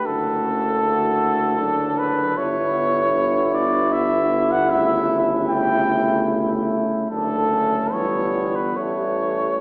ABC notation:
X:1
M:3/4
L:1/16
Q:1/4=76
K:D
V:1 name="Cornet"
A8- A2 B2 | c6 d2 e3 f | e3 z g4 z4 | A4 c3 B c4 |]
V:2 name="Flugelhorn"
F4 F4 D4 | E12- | E12 | D2 C2 B,4 A,4 |]
V:3 name="Trombone section"
A,8 F,4 | B,12 | A,12 | A,4 G,4 G,4 |]
V:4 name="Euphonium" clef=bass
D,2 C,2 D,4 D,4 | D,12 | C,12 | D,4 E,4 E,4 |]
V:5 name="Tuba" clef=bass
F,,,12 | G,,,12- | G,,,12 | F,,,4 G,,,4 A,,,4 |]